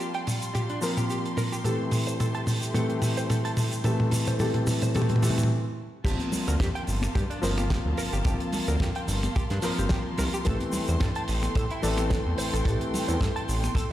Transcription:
Already playing: F3 G3 A#3 C4 F4 A5 C6
0.01 shaker
0.14 G5, closed hi-hat
0.27 open hi-hat, mid tom, shaker
0.42 closed hi-hat, shaker
0.55 G4, closed hi-hat, mid tom, shaker
0.70 D4, closed hi-hat
0.81 F3 A#3 C4 A#4 C5, open hi-hat, shaker
0.97 G4, closed hi-hat, mid tom, shaker
1.10 G4, closed hi-hat, shaker
1.26 closed hi-hat
1.37 A#4, open hi-hat, mid tom, shaker
1.52 G4, closed hi-hat, shaker
1.64 E3 A3 C4 G4 A4, closed hi-hat, mid tom, shaker
1.91 open hi-hat, mid tom, shaker
2.07 C5, closed hi-hat, shaker
2.20 A4, closed hi-hat, mid tom, shaker
2.35 A5, closed hi-hat
2.47 open hi-hat, mid tom, shaker
2.62 closed hi-hat, shaker
2.73 E3 A3 C4 G4 A4, closed hi-hat, mid tom, shaker
2.90 closed hi-hat
3.02 open hi-hat, mid tom, shaker
3.17 C5, closed hi-hat, shaker
3.30 A4, closed hi-hat, mid tom, shaker
3.45 A5, closed hi-hat
3.57 open hi-hat, mid tom, shaker
3.71 closed hi-hat, shaker
3.84 E3 A3 C4 G4 A4, closed hi-hat, mid tom, shaker
4.00 mid tom
4.11 open hi-hat, mid tom, shaker
4.27 C5, closed hi-hat, mid tom, shaker
4.39 E3 A3 C4 G4 A4, open hi-hat, mid tom, shaker
4.54 closed hi-hat, mid tom
4.67 open hi-hat, mid tom, shaker
4.82 C5, closed hi-hat, mid tom, shaker
4.94 E3 A3 C4 G4 A4, closed hi-hat, mid tom, shaker
5.02 mid tom
5.09 closed hi-hat, mid tom
5.16 mid tom
5.21 E3 A3 C4 G4 A4, open hi-hat, mid tom, shaker
5.30 mid tom
5.38 closed hi-hat, mid tom, shaker
5.43 mid tom
6.04 G1 F3 A#3 C4 G4 F5 A5 C6, kick, closed hi-hat, crash, shaker
6.19 closed hi-hat, high conga
6.32 open hi-hat, low conga, shaker
6.48 D2 A#4, closed hi-hat, shaker
6.60 F2 G4, kick, snare, closed hi-hat, shaker
6.75 G5, closed hi-hat
6.87 G1, open hi-hat, shaker
7.02 finger snap, closed hi-hat, high conga, shaker
7.15 G2 G4, kick, closed hi-hat, shaker
7.30 D4, closed hi-hat
7.42 G1 F3 A#3 C4 A#4 C5, open hi-hat, shaker
7.58 G4, finger snap, closed hi-hat, high conga, shaker
7.70 G4, kick, snare, closed hi-hat, shaker
7.85 D2
7.97 G1 A#4, open hi-hat, shaker
8.13 G1 G4, closed hi-hat, shaker
8.25 G1 F3 A#3 C4 G4 A5, kick, closed hi-hat, shaker
8.40 closed hi-hat
8.52 open hi-hat, low conga, shaker
8.67 D2 A#4, closed hi-hat, shaker
8.80 F2 G4, kick, snare, closed hi-hat, shaker
8.95 G5, closed hi-hat
9.08 G1, open hi-hat, shaker
9.23 finger snap, closed hi-hat, high conga, shaker
9.36 G4, kick, closed hi-hat, shaker
9.50 G2 D4, snare, closed hi-hat
9.62 F3 A#3 C4 A#4 C5, open hi-hat, shaker
9.78 G1 G4, closed hi-hat, shaker
9.89 G4, kick, snare, closed hi-hat, shaker
10.18 C2 A#4, open hi-hat, low conga, shaker
10.33 G4, closed hi-hat, shaker
10.45 A1 E3 A3 C4 G4 A4 G5, kick, closed hi-hat, shaker
10.60 closed hi-hat, high conga
10.72 open hi-hat, low conga, shaker
10.88 E2 C5, closed hi-hat, shaker
11.00 G2 A4, kick, snare, closed hi-hat, shaker
11.15 A5, closed hi-hat
11.28 A1, open hi-hat, shaker
11.43 finger snap, closed hi-hat, high conga, shaker
11.55 A2 A4, kick, closed hi-hat, shaker
11.71 E4, closed hi-hat
11.82 A1 E3 A3 C4 A4 D5, open hi-hat, shaker
11.97 A4, finger snap, closed hi-hat, high conga, shaker
12.10 A4, kick, snare, closed hi-hat, shaker
12.26 E2
12.38 A1 C5, open hi-hat, shaker
12.53 A1 A4, closed hi-hat, shaker
12.65 A1 E3 A3 C4 G4 A4, kick, closed hi-hat, shaker
12.81 closed hi-hat
12.94 open hi-hat, low conga, shaker
13.08 E2 C5, closed hi-hat, shaker
13.21 G2 A4, kick, snare, closed hi-hat, shaker
13.36 A5, closed hi-hat
13.49 A1, open hi-hat, shaker
13.63 finger snap, closed hi-hat, high conga, shaker
13.75 A4, kick, closed hi-hat, shaker

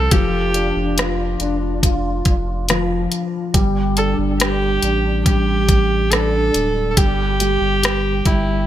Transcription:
Already playing: F3 C4 A4
0.11 F1 F3 G4, kick, closed hi-hat
0.54 D4, closed hi-hat
0.76 F1
0.98 F4, cross-stick, closed hi-hat
1.40 F1 D4, closed hi-hat
1.83 F4, kick, closed hi-hat
2.25 F1, kick, closed hi-hat
2.69 F3, cross-stick, closed hi-hat
3.12 closed hi-hat
3.54 G1 G3, kick, closed hi-hat
3.97 D4 A4, closed hi-hat
4.18 G1
4.40 G3 G4, cross-stick, closed hi-hat
4.82 A1 D4, closed hi-hat
5.26 G3 G4, kick, closed hi-hat
5.69 kick, closed hi-hat
6.11 D4 A4, cross-stick, closed hi-hat
6.54 D1, closed hi-hat
6.91 A4
6.96 G1 G3 G4, kick, closed hi-hat
7.40 G3, closed hi-hat
7.61 G1
7.83 G3, cross-stick, closed hi-hat
8.25 G1 G3 E4, kick, closed hi-hat

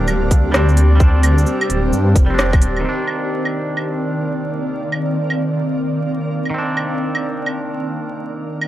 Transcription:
Already playing: D1 G3 A#3 C4 D4 G4 A#4 D5
0.08 claves, shaker
0.31 D2, kick, open hi-hat, shaker
0.52 G3 C4 D4, cross-stick, shaker
0.69 shaker
0.77 open hi-hat
0.96 G3 C5
1.00 C4 D4, kick, shaker
1.23 open hi-hat, claves
1.38 shaker
1.46 shaker
1.61 claves
1.69 D1, open hi-hat
1.93 G2, shaker
2.16 F1, kick, open hi-hat, shaker
2.26 G3 C4
2.34 D4
2.39 cross-stick, shaker
2.53 kick, claves, shaker
2.62 D1, open hi-hat
2.77 claves
2.81 D#3 A#3 C4 A#4
2.85 D#3 C4 D4 D5
3.07 claves
3.45 claves
3.77 claves
4.92 claves
5.30 claves
6.45 claves
6.50 D#3
6.54 C4
6.58 D4
6.77 claves
7.15 claves
7.46 claves
8.61 claves

